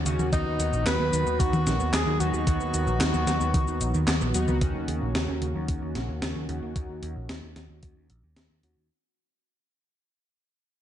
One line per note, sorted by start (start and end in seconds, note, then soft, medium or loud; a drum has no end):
0.00 0.29 D#3 medium
0.00 0.29 A#3 medium
0.00 0.29 C#4 medium
0.00 0.29 F#4 medium
0.06 0.18 D#2 medium
0.06 0.13 C#3 loud
0.06 0.29 C#4 medium
0.06 0.30 D#4 medium
0.06 0.29 F#4 loud
0.06 closed hi-hat medium
0.06 shaker medium
0.19 0.31 D#2 medium
0.19 0.27 F#3 medium
0.19 mid tom medium
0.19 shaker soft
0.32 0.45 D#2 loud
0.32 4.57 D#3 medium
0.32 1.63 D#3 medium
0.32 0.46 D#3 medium
0.32 4.57 F#3 medium
0.32 4.57 B3 medium
0.32 1.63 B3 medium
0.32 0.83 D#4 loud
0.32 1.63 D#4 medium
0.32 4.57 F#4 loud
0.32 1.63 F#4 medium
0.32 0.82 D#5 loud
0.32 kick loud
0.32 closed hi-hat medium
0.32 shaker soft
0.46 0.58 D#2 medium
0.46 0.53 D#4 medium
0.59 0.71 D#2 loud
0.59 0.67 D#3 medium
0.59 closed hi-hat medium
0.59 shaker medium
0.72 0.85 A#1 medium
0.72 0.85 F#4 medium
0.72 shaker soft
0.86 0.98 D#2 loud
0.86 0.94 D#3 loud
0.86 1.41 B4 loud
0.86 1.36 B5 loud
0.86 snare loud
0.86 clap loud
0.86 closed hi-hat medium
0.86 shaker soft
0.99 1.11 D#2 medium
0.99 1.07 B3 medium
1.12 1.25 D#2 medium
1.12 1.26 D#3 medium
1.12 closed hi-hat medium
1.12 shaker medium
1.26 1.38 D#2 medium
1.26 1.34 D#4 medium
1.26 shaker soft
1.40 1.52 D#2 loud
1.40 1.47 D#3 medium
1.40 1.94 F#4 loud
1.40 1.90 F#5 loud
1.40 kick loud
1.40 closed hi-hat medium
1.40 shaker soft
1.53 1.65 D#2 medium
1.53 1.65 F#4 medium
1.53 mid tom loud
1.53 shaker soft
1.66 1.79 A#1 loud
1.66 1.74 D#3 loud
1.66 snare medium
1.66 closed hi-hat medium
1.66 shaker medium
1.80 1.92 D#2 medium
1.80 1.87 B3 medium
1.80 shaker soft
1.93 2.05 D#2 loud
1.93 2.06 D#3 medium
1.93 2.21 G#4 loud
1.93 2.18 G#5 loud
1.93 snare loud
1.93 clap loud
1.93 closed hi-hat loud
1.93 shaker soft
2.06 2.19 D#2 medium
2.06 2.14 D#4 medium
2.20 2.32 D#2 loud
2.20 2.44 D#3 medium
2.20 2.27 D#3 medium
2.20 2.44 B3 medium
2.20 2.44 D#4 medium
2.20 4.34 F#4 loud
2.20 2.44 F#4 loud
2.20 4.30 F#5 medium
2.20 closed hi-hat medium
2.20 shaker medium
2.33 2.45 D#2 medium
2.33 2.46 F#4 medium
2.33 shaker soft
2.47 2.59 D#2 loud
2.47 3.78 D#3 medium
2.47 2.54 D#3 loud
2.47 3.78 B3 medium
2.47 3.78 D#4 medium
2.47 3.78 F#4 medium
2.47 kick loud
2.47 closed hi-hat medium
2.47 shaker soft
2.60 2.72 D#2 medium
2.60 2.68 B3 medium
2.60 shaker soft
2.74 2.86 D#2 loud
2.74 2.87 D#3 medium
2.74 closed hi-hat medium
2.74 shaker medium
2.87 2.99 A#1 medium
2.87 2.94 D#4 medium
2.87 shaker soft
3.00 3.12 D#2 loud
3.00 3.08 D#3 medium
3.00 snare loud
3.00 clap loud
3.00 closed hi-hat loud
3.00 shaker soft
3.14 3.26 D#2 medium
3.14 3.26 F#4 medium
3.14 mid tom medium
3.14 shaker soft
3.27 3.39 D#2 medium
3.27 3.35 D#3 loud
3.27 snare medium
3.27 closed hi-hat medium
3.27 shaker medium
3.40 3.53 D#2 medium
3.40 3.48 B3 medium
3.40 shaker soft
3.54 3.66 C#2 loud
3.54 3.67 D#3 medium
3.54 kick loud
3.54 closed hi-hat loud
3.54 mid tom medium
3.54 shaker soft
3.67 3.79 D#2 medium
3.67 3.75 D#4 medium
3.67 shaker soft
3.80 3.93 A#1 loud
3.80 3.94 D#4 medium
3.80 closed hi-hat medium
3.80 shaker medium
3.94 4.06 D#2 medium
3.94 4.06 D#3 loud
3.94 shaker soft
4.07 4.20 D#2 loud
4.07 4.20 B3 medium
4.07 snare loud
4.07 clap loud
4.07 closed hi-hat loud
4.07 shaker soft
4.21 4.33 A#1 medium
4.21 4.33 B3 loud
4.21 shaker soft
4.34 4.46 D#2 medium
4.34 4.47 F#3 medium
4.34 4.58 B3 loud
4.34 4.58 D#4 medium
4.34 4.58 F#4 loud
4.34 closed hi-hat medium
4.34 shaker medium
4.48 4.60 C#2 medium
4.48 4.61 B3 medium
4.48 mid tom medium
4.48 shaker soft
4.61 4.73 D#2 loud
4.61 4.69 C#3 loud
4.61 8.86 D#3 medium
4.61 5.92 D#3 medium
4.61 8.86 A#3 medium
4.61 5.92 C#4 medium
4.61 8.86 C#4 medium
4.61 5.92 D#4 medium
4.61 5.92 F#4 medium
4.61 8.86 F#4 medium
4.61 kick loud
4.61 closed hi-hat loud
4.75 4.87 D#2 medium
4.75 4.82 F#3 medium
4.88 5.00 D#2 medium
4.88 5.01 C#3 medium
4.88 closed hi-hat medium
5.02 5.14 A#1 medium
5.02 5.09 A#3 medium
5.15 5.27 D#2 loud
5.15 5.22 C#3 medium
5.15 snare loud
5.15 closed hi-hat medium
5.28 5.40 D#2 medium
5.28 5.40 C#4 medium
5.42 5.54 D#2 medium
5.42 5.49 C#3 loud
5.42 closed hi-hat medium
5.55 5.67 D#2 medium
5.55 5.62 F#3 medium
5.68 5.81 D#2 loud
5.68 5.81 C#3 medium
5.68 kick loud
5.68 closed hi-hat loud
5.82 5.94 D#2 medium
5.82 5.89 A#3 medium
5.95 6.07 A#1 medium
5.95 6.03 C#3 medium
5.95 snare medium
5.95 closed hi-hat medium
6.09 6.21 D#2 medium
6.09 6.21 C#4 medium
6.22 6.34 D#2 loud
6.22 6.29 C#3 loud
6.22 snare loud
6.22 closed hi-hat loud
6.36 6.48 D#2 medium
6.36 6.43 F#3 medium
6.49 6.61 D#2 medium
6.49 6.62 C#3 medium
6.49 6.73 D#3 medium
6.49 6.73 C#4 medium
6.49 6.73 D#4 medium
6.49 6.73 F#4 loud
6.49 closed hi-hat medium
6.62 6.74 D#2 medium
6.62 6.70 A#3 medium
6.76 6.88 D#2 loud
6.76 8.06 D#3 medium
6.76 8.07 C#4 medium
6.76 8.06 D#4 medium
6.76 8.06 F#4 medium
6.76 kick loud
6.76 closed hi-hat loud
6.89 7.01 D#2 medium
7.03 7.14 D#2 medium
7.03 closed hi-hat medium
7.16 7.28 A#1 medium
7.29 7.41 D#2 loud
7.29 snare loud
7.29 closed hi-hat medium
7.43 7.55 D#2 medium
7.56 7.68 D#2 medium
7.56 snare medium
7.56 closed hi-hat medium
7.70 7.81 D#2 medium
7.83 kick loud
7.83 closed hi-hat medium
7.96 8.08 D#2 medium
8.10 8.22 A#1 medium
8.10 closed hi-hat medium
8.24 8.35 D#2 medium
8.36 8.49 D#2 loud
8.36 snare loud
8.36 closed hi-hat loud
8.50 8.62 D#2 medium
8.63 8.75 D#2 medium
8.63 8.87 D#3 medium
8.63 8.87 C#4 medium
8.63 8.87 D#4 medium
8.63 8.87 F#4 loud
8.63 closed hi-hat medium
8.77 8.89 D#2 medium